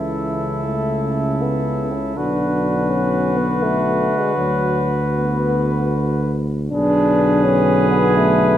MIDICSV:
0, 0, Header, 1, 6, 480
1, 0, Start_track
1, 0, Tempo, 857143
1, 367, Tempo, 764331
1, 847, Tempo, 741656
1, 1335, Time_signature, 3, 2, 24, 8
1, 2767, Tempo, 792602
1, 3727, Tempo, 734394
1, 5167, Tempo, 805369
1, 5406, End_track
2, 0, Start_track
2, 0, Title_t, "Cornet"
2, 0, Program_c, 0, 56
2, 0, Note_on_c, 0, 69, 46
2, 1333, Note_on_c, 0, 71, 52
2, 1343, Note_off_c, 0, 69, 0
2, 4041, Note_off_c, 0, 71, 0
2, 4227, Note_on_c, 0, 71, 71
2, 5406, Note_off_c, 0, 71, 0
2, 5406, End_track
3, 0, Start_track
3, 0, Title_t, "Flugelhorn"
3, 0, Program_c, 1, 56
3, 0, Note_on_c, 1, 64, 41
3, 1333, Note_on_c, 1, 66, 53
3, 1343, Note_off_c, 1, 64, 0
3, 4041, Note_off_c, 1, 66, 0
3, 4225, Note_on_c, 1, 68, 71
3, 5406, Note_off_c, 1, 68, 0
3, 5406, End_track
4, 0, Start_track
4, 0, Title_t, "Euphonium"
4, 0, Program_c, 2, 58
4, 0, Note_on_c, 2, 52, 55
4, 359, Note_off_c, 2, 52, 0
4, 367, Note_on_c, 2, 57, 68
4, 846, Note_on_c, 2, 59, 75
4, 855, Note_off_c, 2, 57, 0
4, 1171, Note_on_c, 2, 61, 62
4, 1181, Note_off_c, 2, 59, 0
4, 1321, Note_off_c, 2, 61, 0
4, 1325, Note_on_c, 2, 62, 75
4, 1800, Note_on_c, 2, 61, 80
4, 1810, Note_off_c, 2, 62, 0
4, 2110, Note_on_c, 2, 59, 76
4, 2120, Note_off_c, 2, 61, 0
4, 2275, Note_on_c, 2, 57, 84
4, 2285, Note_off_c, 2, 59, 0
4, 2634, Note_on_c, 2, 56, 79
4, 2644, Note_off_c, 2, 57, 0
4, 2747, Note_off_c, 2, 56, 0
4, 2751, Note_on_c, 2, 54, 78
4, 3072, Note_off_c, 2, 54, 0
4, 3245, Note_on_c, 2, 59, 86
4, 3695, Note_off_c, 2, 59, 0
4, 4207, Note_on_c, 2, 62, 102
4, 4687, Note_on_c, 2, 61, 102
4, 4696, Note_off_c, 2, 62, 0
4, 4988, Note_off_c, 2, 61, 0
4, 4992, Note_on_c, 2, 59, 93
4, 5157, Note_off_c, 2, 59, 0
4, 5163, Note_on_c, 2, 57, 96
4, 5406, Note_off_c, 2, 57, 0
4, 5406, End_track
5, 0, Start_track
5, 0, Title_t, "Trombone"
5, 0, Program_c, 3, 57
5, 0, Note_on_c, 3, 49, 47
5, 1332, Note_on_c, 3, 50, 53
5, 1342, Note_off_c, 3, 49, 0
5, 4040, Note_off_c, 3, 50, 0
5, 4215, Note_on_c, 3, 50, 72
5, 5406, Note_off_c, 3, 50, 0
5, 5406, End_track
6, 0, Start_track
6, 0, Title_t, "Tuba"
6, 0, Program_c, 4, 58
6, 0, Note_on_c, 4, 37, 48
6, 1311, Note_off_c, 4, 37, 0
6, 1342, Note_on_c, 4, 35, 56
6, 2567, Note_off_c, 4, 35, 0
6, 2761, Note_on_c, 4, 38, 69
6, 4192, Note_off_c, 4, 38, 0
6, 4215, Note_on_c, 4, 35, 76
6, 5406, Note_off_c, 4, 35, 0
6, 5406, End_track
0, 0, End_of_file